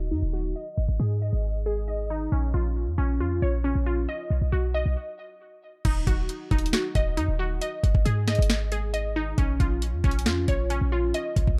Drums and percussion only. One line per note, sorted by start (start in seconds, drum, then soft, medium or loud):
5.85 kick loud
5.85 closed hi-hat medium
5.85 crash medium
6.07 kick loud
6.07 closed hi-hat medium
6.29 closed hi-hat medium
6.51 kick loud
6.51 closed hi-hat soft
6.58 closed hi-hat medium
6.66 closed hi-hat medium
6.73 snare loud
6.73 closed hi-hat medium
6.95 kick loud
6.95 closed hi-hat medium
7.17 closed hi-hat medium
7.61 closed hi-hat medium
7.84 kick loud
7.84 closed hi-hat medium
7.95 kick loud
8.06 closed hi-hat medium
8.28 snare medium
8.28 closed hi-hat soft
8.35 kick medium
8.35 closed hi-hat medium
8.42 closed hi-hat medium
8.50 snare loud
8.50 closed hi-hat medium
8.72 closed hi-hat medium
8.94 closed hi-hat medium
9.38 kick loud
9.38 closed hi-hat medium
9.60 kick loud
9.60 closed hi-hat medium
9.82 closed hi-hat medium
10.04 kick loud
10.04 closed hi-hat soft
10.11 closed hi-hat medium
10.19 closed hi-hat medium
10.26 snare loud
10.26 closed hi-hat medium
10.48 kick medium
10.48 closed hi-hat medium
10.70 closed hi-hat medium
11.14 closed hi-hat medium
11.36 kick loud
11.36 closed hi-hat medium
11.47 kick loud